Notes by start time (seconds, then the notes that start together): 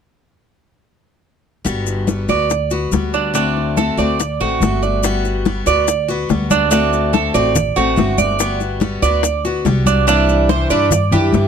1.65 G1 G3 B3 F#4, high bongo, high conga, maracas
1.87 high bongo, high conga, maracas
2.07 G3 B3 F#4, high bongo, high conga, maracas
2.28 D2 B3 F#4 D5, high bongo, high conga, maracas
2.50 muted steel-string acoustic guitar stroke, high bongo, high conga, maracas
2.71 B3 F#4, high conga, maracas
2.92 D2 G3 B3 F#4, high bongo, low bongo, high conga, maracas
3.14 D4, high bongo, high conga, maracas
3.34 D3 A3 C4 D4 F#4, high bongo, high conga, maracas
3.56 high bongo, high conga
3.77 D3 A3 C4 F#4 A4, high bongo, high conga, maracas
3.97 D2 A3 C4 F#4 D5, high bongo, high conga, maracas
4.19 muted steel-string acoustic guitar stroke, high bongo, high conga, maracas
4.40 A1 A3 C4 F#4, high conga
4.61 G1 D3 A3 C4 F#4, high bongo, low bongo, high conga, maracas
4.82 D5, high bongo, high conga, maracas
5.03 G3 B3 F#4, high bongo, high conga, maracas
5.25 high bongo, high conga, maracas
5.45 G3 B3 F#4, high bongo, high conga, maracas
5.66 D2 B3 F#4 D5, high bongo, high conga, maracas
5.88 muted steel-string acoustic guitar stroke, high bongo, high conga, maracas
6.08 B3 F#4, high conga, maracas
6.29 D2 G3 B3 F#4, high bongo, low bongo, high conga, maracas
6.51 D4, high bongo, high conga, maracas
6.71 D3 A3 C4 D4 F#4, high bongo, high conga, maracas
6.93 high bongo, high conga, maracas
7.13 D3 A3 C4 F#4 A4, high bongo, high conga, maracas
7.34 A1 A3 C4 F#4 D5, high bongo, high conga, maracas
7.55 muted steel-string acoustic guitar stroke, high bongo, high conga, low conga, maracas
7.76 A1 A3 C4 F#4, high conga, maracas
7.96 G1 D3 A3 C4 F#4, high bongo, low bongo, high conga, maracas
8.18 D5, high bongo, high conga, maracas
8.39 G3 B3 F#4, high bongo, high conga, maracas
8.60 high bongo, high conga, maracas
8.80 G3 B3 F#4, high bongo, high conga, maracas
9.02 D2 B3 F#4 D5, high bongo, high conga, maracas
9.23 muted steel-string acoustic guitar stroke, high bongo, high conga, maracas
9.44 B3 F#4, high conga, maracas
9.65 C2 G3 B3 F#4, high bongo, low bongo, high conga, maracas
9.86 D4, high bongo, high conga, maracas
10.07 C3 E3 G3 D4 E4, high bongo, high conga, maracas
10.29 high bongo, high conga, maracas
10.49 E3 G3 D4 E4 C5, high bongo, high conga, maracas
10.70 G2 E3 G3 D4 E4 D5, high bongo, high conga, maracas
10.91 muted steel-string acoustic guitar stroke, high bongo, high conga, low conga, maracas
11.12 F#2 E3 G3 D4 E4 G4, high conga, low conga, maracas
11.32 G2 E3 G3 D4 E4, high bongo, low bongo, high conga, maracas